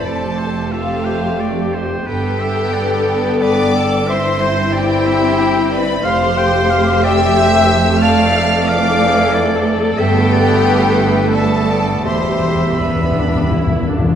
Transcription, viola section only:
\new Staff \with { instrumentName = "Viola section" } { \time 3/4 \key g \mixolydian \tempo 4 = 90 << { g'2. | a'2. | e'2. | g'2. |
a'2.~ | a'2. | g'4 b8 d'8 e'8 d'8 | } \\ { a2. | b2. | c'2. | a2.~ |
a2. | a2.~ | a4 r2 | } >> }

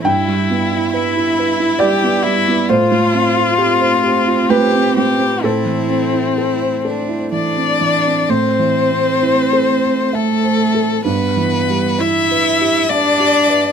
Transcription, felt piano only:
\new Staff \with { instrumentName = "Felt piano" } { \time 3/4 \key a \minor \tempo 4 = 66 << { g''2 d''4 | c''2 b'4 | a'2~ a'8 r8 | r2. |
r2. | } \\ { g,16 g16 b16 e'16 b'16 e'16 b'16 e'16 g16 b16 g16 b16 | a,16 a16 c'16 f'16 g'16 c''16 g'16 f'16 a16 c'16 a16 c'16 | a,16 e16 c'16 e'16 a'16 c''16 a'16 e'16 e16 c'16 e16 c'16 | \tuplet 3/2 { a,8 e8 c'8 e'8 a'8 c''8 e''8 c''8 a'8 } |
\tuplet 3/2 { g,8 e8 g8 e'8 b'8 g'8 e''8 g'8 b'8 } | } >> }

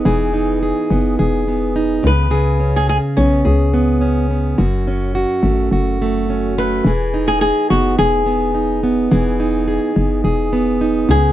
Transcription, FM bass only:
\new Staff \with { instrumentName = "FM bass" } { \clef bass \time 4/4 \key e \major \tempo 4 = 106 e,,4~ e,,16 r16 fis,,8 e,,4. cis,8~ | cis,4~ cis,16 r16 b,,8 cis,2 | fis,,4~ fis,,16 r16 gis,,8 fis,,2 | e,,4~ e,,16 r16 fis,,8 e,,2 |
e,,4~ e,,16 r16 fis,,8 e,,4. cis,8 | }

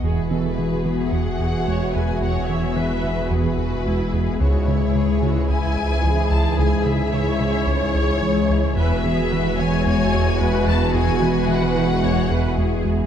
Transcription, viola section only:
\new Staff \with { instrumentName = "Viola section" } { \time 4/4 \key e \major \tempo 4 = 110 gis'8 a'8 gis'2 cis''8 b'8 | cis''4 b'4 gis'8 fis'8 e'8 gis'8 | fis'8 e'8 gis'8 fis'8 e'4 gis'4~ | gis'4 cis''2. |
b'8 gis'8 b'8 cis''4. b'4 | gis'8 b'4. cis''8 b'8 gis'4 | }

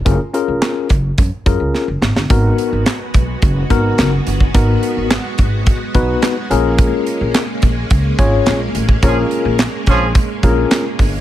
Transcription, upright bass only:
\new Staff \with { instrumentName = "Upright bass" } { \clef bass \time 4/4 \key gis \dorian \tempo 4 = 107 fis,,16 r8 eis,,16 r8 fis,,8 fis,16 r16 fis,16 cis,16 r16 fis,,16 gis,,16 g,,16 | gis,,8 r16 gis,,16 r8 b,,8 fis,,8 gis,,8 fis,,8 g,,8 | gis,,8 r16 gis,,8 r16 gis,,8. r16 b,,8 r8 ais,,8~ | ais,,8 r16 ais,,16 r8 ais,,8 cis,8 gis,,8 ais,,8 a,,8 |
ais,,8 r16 ais,,8 r16 ais,,8. r16 ais,,8 r8 g,,8 | }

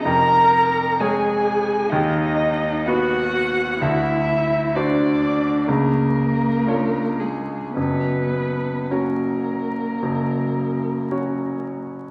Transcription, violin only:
\new Staff \with { instrumentName = "Violin" } { \time 4/4 \key fis \major \tempo 4 = 62 ais''4 gis''4 dis''4 fis''4 | e''4 d''4 ais'4. gis'8 | b'4 ais'2~ ais'8 r8 | }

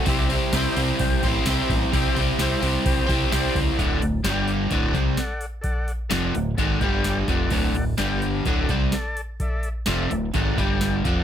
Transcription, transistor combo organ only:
\new Staff \with { instrumentName = "Transistor combo organ" } { \time 4/4 \key d \mixolydian \tempo 4 = 128 <g' c'' e''>8 r8 <g' c'' e''>8 r8 <g' c'' g''>8 r8 <g' c'' e''>8 r8 | <g' c'' e''>8 r8 <g' c'' e''>8 r8 <g' c'' g''>8 r8 <g' c'' d''>8 r8 | <a' d'' fis''>8 r8 <g' d'' g''>8 r8 <a' d'' fis''>8 r8 <a' d'' fis''>8 r8 | <a' d'' fis''>8 r8 <a' d'' fis''>8 r8 <a' d'' fis''>8 <g' d'' g''>4 <a' d'' fis''>8~ |
<a' d'' fis''>8 r8 <g' d'' g''>8 r8 <a' d'' fis''>8 r8 <a' d'' a''>8 r8 | <a' d'' e''>8 r8 <a' d'' e''>8 r8 <a' d'' fis''>8 <g' d'' g''>4 <a' d'' fis''>8 | }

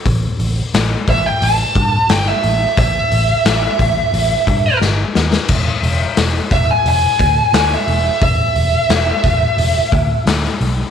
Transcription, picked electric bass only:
\new Staff \with { instrumentName = "Picked electric bass" } { \clef bass \time 4/4 \key e \phrygian \tempo 4 = 88 a,,8 a,,8 a,,8 a,,8 a,,8 g,8 g,,8 a,,8 | a,,8 a,,8 a,,8 a,,8 a,,8 g,8 g,,8 dis,8 | e,,8 e,,8 e,,8 e,,8 e,,8 d,8 d,8 e,,8 | e,,8 e,,8 e,,8 e,,8 e,,8 d,8 d,8 b,,8 | }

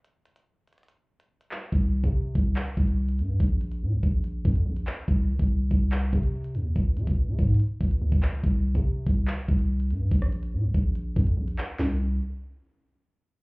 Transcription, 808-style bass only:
\new Staff \with { instrumentName = "808-style bass" } { \clef bass \time 4/4 \key c \phrygian \tempo 4 = 143 r1 | c,8. c8. c,8 r8 c,4 g,8 | bes,,4 bes,16 bes,,16 bes,,4 f,8 bes,,8 r8 | c,8 des,16 c,8. c,4 c4 ees,8 |
des,8 des16 des,8 des16 aes,8 r8 des,8 des,16 des,8. | c,8. c8. c,8 r8 c,4 g,8 | bes,,4 bes,16 bes,,16 bes,,4 f,8 bes,,8 r8 | c,4 r2. | }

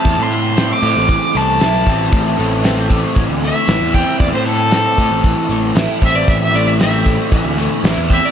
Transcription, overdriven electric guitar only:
\new Staff \with { instrumentName = "Overdriven electric guitar" } { \time 4/4 \key a \minor \tempo 4 = 116 <a, e a c' e'>8 a8 c'8 a8 e8 a8 e'8 c'8 | a,8 a8 c'8 a8 e8 a8 e'8 c'8 | a,8 a8 c'8 a8 e8 a8 e'8 c'8 | a,8 a8 c'8 a8 e8 a8 e'8 c'8 | }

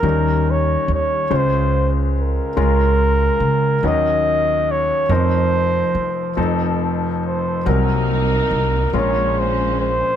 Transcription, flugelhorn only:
\new Staff \with { instrumentName = "Flugelhorn" } { \time 6/8 \key bes \minor \tempo 4. = 47 bes'8 des''8 des''8 c''8 r8 bes'8~ | bes'4. ees''4 des''8 | c''2 r8 c''8 | bes'4. des''8 c''8 c''8 | }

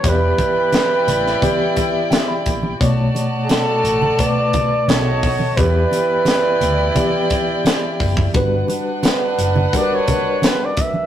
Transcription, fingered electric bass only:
\new Staff \with { instrumentName = "Fingered electric bass" } { \clef bass \time 4/4 \key e \dorian \tempo 4 = 87 e,,8 r4 a,,8 r4. ais,,8 | b,,8 r4 a,,8 r4 b,,4 | e,8 r4 d,8 r4. fis,,8 | g,,8 r4 fis,,8 r2 | }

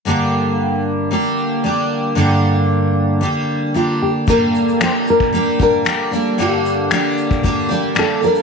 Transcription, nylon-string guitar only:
\new Staff \with { instrumentName = "Nylon-string guitar" } { \time 4/4 \key g \minor \tempo 4 = 114 r1 | r2. f'8 g'8 | bes'4 c''8 bes'4 bes'4. | g'2 r4 a'8 bes'8 | }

